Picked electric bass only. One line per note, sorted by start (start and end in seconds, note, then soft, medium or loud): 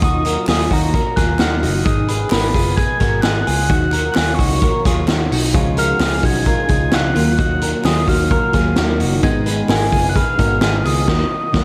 0.00 0.36 D#2 medium
0.48 0.67 D#2 medium
0.71 0.99 D#2 loud
1.18 1.36 D#2 loud
1.40 1.65 D#2 loud
1.63 1.82 F#1 medium
1.86 2.24 G#1 loud
2.32 2.51 G#1 loud
2.55 2.83 F#1 medium
3.01 3.20 G#1 loud
3.24 3.43 G#1 loud
3.48 3.70 C#2 medium
3.70 4.08 D#2 loud
4.17 4.36 D#2 loud
4.39 4.67 C#2 medium
4.86 5.04 D#2 medium
5.08 5.27 D#2 loud
5.32 5.55 B1 medium
5.55 5.92 C#2 loud
6.00 6.19 C#2 loud
6.23 6.52 B1 medium
6.70 6.89 C#2 medium
6.93 7.12 C#2 medium
7.16 7.72 D#2 medium
7.85 8.04 D#2 loud
8.08 8.36 D#2 medium
8.54 8.73 D#2 medium
8.78 9.02 D#2 loud
9.01 9.19 F#1 medium
9.23 9.61 G#1 loud
9.69 9.88 G#1 loud
9.93 10.21 F#1 medium
10.39 10.58 G#1 loud
10.62 10.81 G#1 loud
10.85 11.07 C#2 medium
11.08 11.24 D#2 loud
11.54 11.64 D#2 loud